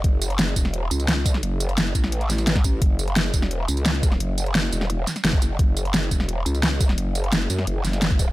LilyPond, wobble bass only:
\new Staff \with { instrumentName = "Wobble bass" } { \clef bass \time 4/4 \key fis \minor \tempo 4 = 173 fis,,4. e,,4 cis,4. | fis,,4. a,,2~ a,,8 | fis,,4. e,,4 cis,4. | fis,,4. e,,4 r8 fis,,4 |
fis,,4. e,,4 cis,4. | fis,,4. fis,8 fis,,8 fis,,4. | }